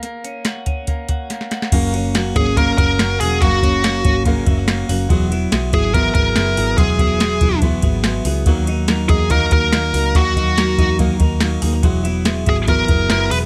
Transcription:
<<
  \new Staff \with { instrumentName = "Lead electric guitar" } { \time 4/4 \key fis \major \tempo 4 = 142 r1 | \key fis \mixolydian r4. gis'8 ais'8 ais'4 gis'8 | fis'2 r2 | r4. gis'8 ais'8 ais'4. |
gis'2 r2 | r4. gis'8 ais'8 ais'4. | fis'2 r2 | r4. gis'8 ais'4 ais'8 b'8 | }
  \new Staff \with { instrumentName = "Clean electric guitar" } { \time 4/4 \key fis \major ais8 cis'8 fis'8 cis'8 ais8 fis'8 ais8 fis'8 | \key fis \mixolydian ais8 cis'8 fis'8 cis'8 ais8 fis'8 ais8 fis'8 | ais8 cis'8 fis'8 cis'8 ais8 e'16 fis'16 ais8 fis'8 | fis8 e'8 gis'8 e'8 b8 gis'8 b8 gis'8 |
fis8 e'8 gis'8 e'8 b8 gis'8 b8 gis'8 | fis8 dis'8 ais'8 dis'8 ais8 ais'8 ais8 ais'8 | fis8 dis'8 ais'8 dis'8 ais8 ais'8 ais8 gis'16 ais'16 | fis8 e'8 gis'8 e'8 b8 gis'8 b8 gis'8 | }
  \new Staff \with { instrumentName = "Steel-string acoustic guitar" } { \time 4/4 \key fis \major r1 | \key fis \mixolydian <fis, cis fis ais cis' fis'>8 <fis ais cis' fis'>8 <fis ais cis' fis'>8 <fis ais cis' fis'>8 <fis, cis fis ais cis' fis'>8 <fis cis' fis'>8 <fis ais cis' fis'>8 <fis ais cis' fis'>8 | <fis, cis fis ais cis' fis'>8 <fis ais cis' fis'>8 <fis ais cis' fis'>8 <fis ais cis' fis'>8 <fis, cis fis ais cis' fis'>8 <fis ais cis' fis'>8 <fis ais cis' fis'>8 <fis ais cis' fis'>8 | <e gis b e' fis'>8 <b e' fis'>8 <gis b e' fis'>8 <b e' fis'>8 <e gis b e' fis'>8 <b e'>8 <gis b e' fis'>8 <b e' fis'>8 |
<e gis b e' fis'>8 <b e' fis'>8 <gis b e' fis'>8 <b e' fis'>8 <e gis b e' fis'>8 <b e' fis'>8 <gis b e' fis'>8 <b e' fis'>8 | <dis fis ais dis' fis'>8 <ais dis' fis'>8 <fis ais dis' fis'>8 <ais dis' fis'>8 <dis fis ais dis' fis'>8 <ais dis' fis'>8 <fis ais dis' fis'>8 <ais dis' fis'>8 | <dis fis ais dis' fis'>8 <ais dis' fis'>8 <fis ais dis' fis'>8 <ais dis' fis'>8 <dis fis ais dis' fis'>8 <ais dis' fis'>8 <fis ais dis' fis'>8 <ais dis' fis'>8 | <e gis b e' fis'>8 <b e' fis'>8 <gis b e' fis'>8 <b e' fis'>8 <e gis b e' fis'>8 <b e' fis'>8 <gis b e' fis'>8 <b e'>8 | }
  \new Staff \with { instrumentName = "Picked electric bass" } { \clef bass \time 4/4 \key fis \major r1 | \key fis \mixolydian fis,,4. gis,,4 fis,,8 fis,,8 e,,8 | fis,,4. gis,,4 fis,,4 fis,,8 | e,,4 b,,8 gis,,4 gis,,8 fis,,8 gis,,8 |
e,,4. e,,4 gis,,4 cis,8 | dis,4. e,4 dis,8 dis,8 cis,8 | dis,4. e,4 dis,4 dis,8 | e,,4. gis,,4 fis,,8 fis,,8 e,,8 | }
  \new DrumStaff \with { instrumentName = "Drums" } \drummode { \time 4/4 hh8 hh8 <hh sn>8 <hh bd>8 <hh bd>8 <hh bd>8 <hh sn>16 sn16 <hh sn>16 sn16 | <cymc bd cymr>8 cymr8 <cymr sn>8 <bd cymr>8 <bd cymr>8 <bd cymr>8 <cymr sn>8 <hho cymr>8 | <bd cymr>8 <bd cymr>8 <cymr sn>8 <bd cymr>8 <bd cymr>8 <bd cymr>8 <cymr sn>8 <hho cymr>8 | <bd cymr>8 cymr8 <cymr sn>8 <bd cymr>8 <bd cymr>8 <bd cymr>8 <cymr sn>8 <hho cymr>8 |
<bd cymr>8 <bd cymr>8 <cymr sn>8 <bd cymr>8 <bd cymr>8 <bd cymr>8 <cymr sn>8 <hho cymr>8 | <bd cymr>8 cymr8 <cymr sn>8 <bd cymr>8 <bd cymr>8 <bd cymr>8 <cymr sn>8 <hho cymr>8 | <bd cymr>8 <bd cymr>8 <cymr sn>8 <bd cymr>8 <bd cymr>8 <bd cymr>8 <cymr sn>8 <hho cymr>8 | <bd cymr>8 cymr8 <cymr sn>8 <bd cymr>8 <bd cymr>8 <bd cymr>8 <cymr sn>8 <hho cymr>8 | }
>>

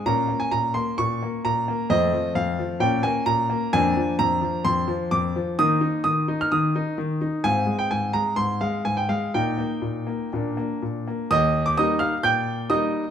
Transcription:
<<
  \new Staff \with { instrumentName = "Grand piano" } { \time 4/4 \key bes \dorian \tempo 4 = 129 << { bes''8. aes''16 bes''8 c'''8 des'''4 bes''4 | ees''4 f''4 g''8 aes''8 bes''4 | \key ees \major aes''4 bes''4 c'''4 d'''4 | ees'''4 ees'''8. f'''16 ees'''4. r8 |
aes''8. g''16 aes''8 bes''8 c'''8 f''8 aes''16 g''16 f''8 | g''2. r4 | <ees'' ees'''>8. d'''16 <ees'' ees'''>8 <f'' f'''>8 <g'' g'''>4 <ees'' ees'''>4 | } \\ { <bes des'>1 | <a c'>2 <bes des'>2 | <bes d'>1 | <bes ees'>1 |
<c' f'>1 | <bes ees'>2 <bes d'>2 | r1 | } >> }
  \new Staff \with { instrumentName = "Grand piano" } { \clef bass \time 4/4 \key bes \dorian bes,8 bes8 bes,8 bes8 bes,8 bes8 bes,8 bes8 | f,8 f8 f,8 f8 bes,8 bes8 bes,8 bes8 | \key ees \major f,8 f8 f,8 f8 f,8 f8 f,8 f8 | ees8 ees'8 ees8 ees'8 ees8 ees'8 ees8 ees'8 |
aes,8 aes8 aes,8 aes8 aes,8 aes8 aes,8 aes8 | bes,8 bes8 bes,8 bes8 bes,8 bes8 bes,8 bes8 | ees,4 <g bes ees'>4 bes,4 <g bes ees'>4 | }
>>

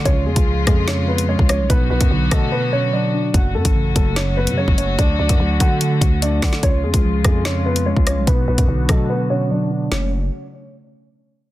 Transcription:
<<
  \new Staff \with { instrumentName = "Grand piano" } { \time 4/4 \key fis \minor \tempo 4 = 146 <cis' cis''>8 <gis gis'>4 <gis gis'>8 <cis' cis''>8 <b b'>8 <cis' cis''>8 <cis' cis''>8 | <b b'>8 <b b'>4 <a a'>8 <b b'>8 <cis' cis''>8 <d' d''>4 | <fis' fis''>8 <a a'>4 <a a'>8 <cis' cis''>8 <b b'>8 <cis' cis''>8 <cis' cis''>8 | <d' d''>8 <d' d''>4 <fis' fis''>4. <d' d''>8 r8 |
<cis' cis''>8 <gis gis'>4 <gis gis'>8 <cis' cis''>8 <b b'>8 <cis' cis''>8 <cis' cis''>8 | <b b'>8 <b b'>4 <a a'>8 <b b'>8 <cis' cis''>8 <d' d''>4 | cis'8 r2. r8 | }
  \new Staff \with { instrumentName = "String section" } { \clef bass \time 4/4 \key fis \minor << { <eis gis eis'>1 | <fis b fis'>1 | <fis a fis'>1~ | <fis a fis'>1 |
<eis gis eis'>1 | <fis b fis'>1 | <cis fis a fis'>8 r2. r8 | } \\ { cis1 | d1 | cis1 | d1 |
cis1 | d1 | r1 | } >> }
  \new Staff \with { instrumentName = "Synth keys" } { \clef bass \time 4/4 \key fis \minor cis8 cis8 eis8 gis8 cis8 cis8 gis8 cis''8 | b,8 b,8 d8 fis8 b,8 b,8 fis8 d'8 | fis,8 fis,8 cis8 fis8 fis,8 fis,8 fis8 cis'8 | d8 d8 fis8 a8 d8 d8 a8 d''8 |
cis8 cis8 eis8 gis8 cis8 cis8 gis8 cis''8 | b,8 b,8 d8 fis8 b,8 b,8 fis8 d'8 | <cis fis a cis'>8 r2. r8 | }
  \new Staff \with { instrumentName = "808-style bass" } { \clef bass \time 4/4 \key fis \minor cis,8 eis,16 cis,8. eis,4.~ eis,16 cis,8 b,,16 | b,,8 b,,16 fis,16 b,,8 b,8 r2 | fis,,8 fis,16 a,,8. fis,,4~ fis,,16 cis8 fis,,8. | d,8 d,16 fis,16 d,8 d4 d,4 d8 |
cis,8 eis,16 cis,8. eis,4.~ eis,16 cis,8 b,,16 | b,,8 b,,16 fis,16 b,,8 b,8 r2 | fis,,4 r2. | }
  \new DrumStaff \with { instrumentName = "Drums" } \drummode { \time 4/4 <hh bd>8. <hh bd>16 r8 <hh bd ss>8 <hh sn>8. hh16 r16 bd16 <hh ss>8 | <hh bd>8. <hh bd>16 r8 <hh bd ss>8 r4 r4 | <hh bd>8. <hh bd>16 r8 <hh bd>8 <hh sn>8. hh16 r16 bd16 hh8 | <hh bd>8. <hh bd>16 r8 <hh bd>8 hh8 <hh bd>8 hh8 <hho bd sn>16 sn16 |
<hh bd>8. <hh bd>16 r8 <hh bd ss>8 <hh sn>8. hh16 r16 bd16 <hh ss>8 | <hh bd>8. <hh bd>16 r8 <hh bd ss>8 r4 r4 | sn4 r4 r4 r4 | }
>>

